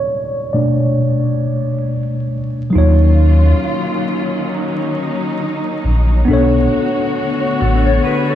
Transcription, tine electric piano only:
0.00 0.56 C#5 loud
0.00 0.53 D5 medium
0.53 1.82 B2 medium
0.53 1.82 A3 medium
0.53 1.83 D4 medium
0.53 2.26 D5 medium
2.70 6.21 F#3 medium
2.70 6.23 D#4 medium
2.75 6.24 F4 medium
2.75 6.25 C#5 medium
6.25 8.35 B3 medium
6.25 8.35 D4 medium
6.31 8.35 A4 medium
6.31 8.35 C#5 medium

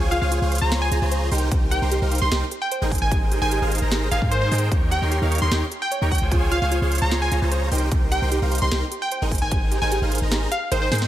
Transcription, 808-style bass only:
0.00 0.20 C#2 loud
0.22 0.40 C#2 loud
0.42 0.60 C#2 loud
0.62 0.90 C#2 loud
0.91 1.00 C#2 loud
1.02 1.30 C#2 medium
1.31 1.50 C2 loud
1.52 1.80 C2 loud
1.82 2.00 C2 medium
2.02 2.20 C2 loud
2.22 2.30 C2 loud
2.32 2.43 C2 loud
2.82 3.00 G#1 loud
3.02 3.40 G#1 loud
3.42 3.60 G#1 loud
3.62 3.80 G#1 loud
3.82 4.10 G#1 loud
4.11 4.20 G#1 loud
4.22 4.50 G#2 loud
4.51 4.70 G#2 loud
4.72 5.00 D#2 loud
5.02 5.20 D#2 medium
5.22 5.40 D#2 loud
5.42 5.50 D#2 loud
5.51 5.63 D#2 medium
6.02 6.20 D#2 loud
6.22 6.60 C#2 loud
6.62 6.80 C#2 medium
6.82 7.00 C#2 loud
7.02 7.30 C#2 loud
7.32 7.40 C#2 loud
7.42 7.70 C#2 loud
7.71 7.90 C2 medium
7.92 8.20 C2 loud
8.22 8.40 C2 loud
8.42 8.60 C2 loud
8.62 8.70 C2 loud
8.72 8.83 C2 loud
9.22 9.40 G#1 loud
9.42 9.80 G#1 loud
9.82 10.00 G#1 medium
10.02 10.20 G#1 loud
10.22 10.47 G#1 loud
10.71 10.90 G#1 medium
10.91 11.08 G#2 loud

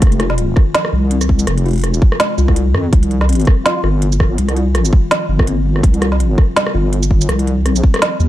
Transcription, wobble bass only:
0.02 0.55 F1 loud
0.93 1.46 C2 loud
1.47 2.00 F1 loud
2.38 2.73 C2 loud
2.74 2.91 F2 medium
2.93 3.46 C2 loud
3.84 4.37 G1 loud
4.39 4.92 C2 loud
5.29 5.82 G1 loud
5.83 6.37 C2 loud
6.75 7.28 G1 loud
7.29 7.82 C2 medium
8.20 8.29 D#2 loud

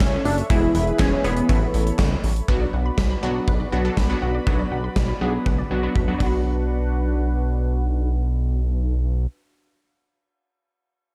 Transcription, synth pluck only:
0.00 0.22 E3 medium
0.00 0.22 A3 medium
0.00 0.22 E4 medium
0.00 0.22 F#4 medium
0.50 0.92 E3 medium
0.50 0.92 G#3 medium
0.50 0.92 B3 medium
0.50 0.92 E4 medium
0.50 0.92 G#4 medium
1.00 1.20 E3 medium
1.00 1.20 G#3 medium
1.00 1.20 B3 medium
1.00 1.20 E4 medium
1.00 1.20 G#4 medium
1.24 1.48 E3 medium
1.24 1.49 G#3 medium
1.24 1.48 B3 medium
1.24 1.48 E4 medium
1.24 1.49 G#4 medium
1.49 2.32 E3 medium
1.49 2.32 A3 medium
1.49 2.32 B3 medium
1.49 2.32 C#4 medium
1.49 2.32 E4 medium
2.48 3.11 F#3 medium
2.48 3.11 B3 medium
2.48 3.11 D4 medium
2.48 3.11 F#4 loud
3.23 3.64 F#3 medium
3.23 3.64 B3 medium
3.23 3.64 D4 medium
3.23 3.64 F#4 loud
3.72 3.83 F#3 medium
3.72 3.83 B3 medium
3.72 3.83 D4 medium
3.72 3.83 F#4 loud
3.85 4.06 F#3 medium
3.85 4.06 B3 medium
3.85 4.06 D4 medium
3.85 4.06 A4 loud
4.10 4.41 F#3 medium
4.10 4.41 B3 medium
4.10 4.41 D4 medium
4.10 4.41 F#4 loud
4.47 5.09 F#3 medium
4.47 5.09 B3 medium
4.47 5.09 D4 medium
4.47 5.09 F#4 loud
5.21 5.63 F#3 medium
5.21 5.63 B3 medium
5.21 5.63 D4 medium
5.21 5.63 G#4 medium
5.71 5.81 F#3 medium
5.71 5.81 B3 medium
5.71 5.81 D4 medium
5.71 5.81 F#4 loud
5.83 6.04 F#3 medium
5.83 6.04 B3 medium
5.83 6.04 D4 medium
5.83 6.04 F#4 medium
6.08 6.17 F#3 medium
6.08 6.18 B3 medium
6.08 6.20 D4 medium
6.08 6.20 F#4 loud
6.18 9.24 F#3 medium
6.18 9.26 B3 medium
6.18 9.27 D4 medium
6.22 9.28 F#4 medium

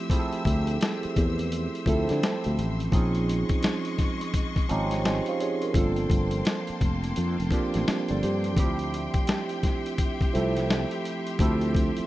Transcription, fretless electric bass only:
0.46 0.76 D2 loud
1.05 muted fretless electric bass stroke soft
1.18 1.66 E2 medium
1.87 2.06 D2 medium
2.11 2.21 D3 loud
2.46 2.56 D2 medium
2.59 2.88 A1 medium
2.93 3.42 A#1 loud
3.51 muted fretless electric bass stroke soft
4.71 5.19 G#1 medium
5.75 6.05 G1 loud
6.11 6.41 G1 loud
6.70 muted fretless electric bass stroke soft
6.82 7.12 F1 medium
7.17 7.36 F2 medium
7.40 7.50 F1 medium
7.75 7.86 A1 medium
8.10 8.21 G1 medium
8.23 8.58 G2 medium
8.58 9.07 D2 loud
9.15 muted fretless electric bass stroke soft
10.35 10.84 C2 medium
11.40 11.89 D2 loud
11.99 muted fretless electric bass stroke soft

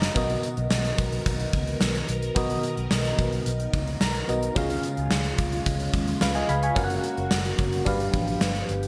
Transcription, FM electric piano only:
0.00 0.14 D#5 medium
0.00 0.17 A#5 medium
0.15 0.94 B2 medium
0.15 2.31 B3 medium
0.15 2.32 F#4 medium
0.15 2.32 A#4 medium
0.15 2.33 D#5 medium
2.35 3.15 B2 medium
2.35 4.24 B3 medium
2.35 4.25 F#4 medium
2.35 4.25 A#4 medium
2.35 4.26 D#5 medium
4.01 4.52 A#5 medium
4.28 4.56 B3 medium
4.28 4.56 F#4 medium
4.28 4.56 A#4 medium
4.28 4.57 D#5 medium
4.55 5.35 C#3 medium
4.55 6.72 C#4 medium
4.55 6.72 F4 medium
4.55 6.73 G#4 medium
4.55 6.19 F5 medium
6.22 6.35 B4 medium
6.22 6.34 F5 medium
6.35 6.48 D#5 medium
6.35 6.48 G#5 medium
6.49 6.62 F5 medium
6.49 6.62 B5 medium
6.63 6.89 G#5 medium
6.63 6.89 C#6 medium
6.75 7.84 C#4 medium
6.75 7.84 F#4 medium
6.75 7.84 A#4 medium
6.75 6.83 F5 medium
6.84 7.88 F#5 medium
7.85 8.65 G2 medium
7.85 8.88 D4 medium
7.85 8.88 G4 medium
7.85 8.88 B4 medium
7.85 8.88 F5 medium

